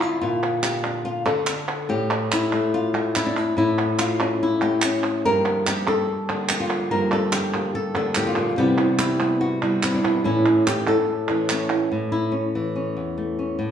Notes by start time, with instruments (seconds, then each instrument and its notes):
Already playing: nylon-string guitar D3 D4 E4
0.01 nylon-string guitar F4, clap
0.21 nylon-string guitar A#2 F4
0.43 clap
0.63 nylon-string guitar G4, clap
0.84 nylon-string guitar D4, clap
1.05 nylon-string guitar F4
1.25 nylon-string guitar D3 A4, clap
1.47 nylon-string guitar D4, clap
1.89 nylon-string guitar A2 G4
2.10 clap
2.32 nylon-string guitar E4, clap
2.53 nylon-string guitar A3, clap
2.74 nylon-string guitar F4
2.94 nylon-string guitar A3, clap
3.15 nylon-string guitar E4, clap
3.26 nylon-string guitar D4
3.37 nylon-string guitar E4, clap
3.57 nylon-string guitar A2 E4
3.79 clap
3.99 nylon-string guitar F4, clap
4.20 nylon-string guitar C#4, clap
4.43 nylon-string guitar E4
4.61 nylon-string guitar A3 G4, clap
4.82 nylon-string guitar C#4, clap
5.03 clap
5.24 nylon-string guitar G2 D3 F3 A#3 D4 G4 A#4
5.45 clap
5.66 nylon-string guitar F3 A#3 D4 G4, clap
5.86 nylon-string guitar F3 A#3 D4 G4 A4, clap
6.08 muted nylon-string guitar stroke
6.29 nylon-string guitar D3 F3 A#3 D4 G4, clap
6.49 nylon-string guitar F3 A#3 D4 G4, clap
6.60 nylon-string guitar F4
6.70 clap
6.91 nylon-string guitar G2 D3 F3 A#3 D4 G4 A#4
7.11 nylon-string guitar A4, clap
7.32 nylon-string guitar F3 A#3 D4 G4, clap
7.53 nylon-string guitar F3 A#3 D4 G4, clap
7.74 nylon-string guitar A4, muted nylon-string guitar stroke
7.94 nylon-string guitar D3 F3 A#3 D4 G4 A4, clap
8.15 nylon-string guitar A2 F3 A#3 D4 G4, clap
8.27 nylon-string guitar F4
8.35 nylon-string guitar A#2, clap
8.56 nylon-string guitar C3 E3 G3 B3 E4 G4
8.78 nylon-string guitar G3 B3 E4, clap
8.98 nylon-string guitar E3 G3 B3 E4, clap
9.19 nylon-string guitar G3 B3 E4, clap
9.40 nylon-string guitar F#4, muted nylon-string guitar stroke
9.61 nylon-string guitar G3 B3 E4, clap
9.83 nylon-string guitar C3 E4, clap
9.94 nylon-string guitar D4
10.02 nylon-string guitar B2 G3 B3 E4, clap
10.24 nylon-string guitar A2 E3 A3 C#4 E4
10.45 nylon-string guitar A3 C#4 E4, clap
10.65 nylon-string guitar E3 A3 C#4 E4 G4, clap
10.86 nylon-string guitar A3 C#4 E4 A4, clap
11.07 muted nylon-string guitar stroke
11.28 nylon-string guitar E3 A3 C#4 E4, clap
11.49 nylon-string guitar A3 C#4, clap
11.69 nylon-string guitar A3 C#4 E4, clap
11.92 nylon-string guitar A2
12.12 nylon-string guitar E4
12.32 nylon-string guitar C#4
12.55 nylon-string guitar E3
12.76 nylon-string guitar C#4
12.97 nylon-string guitar E2
13.18 nylon-string guitar A3
13.39 nylon-string guitar C#4
13.59 nylon-string guitar A2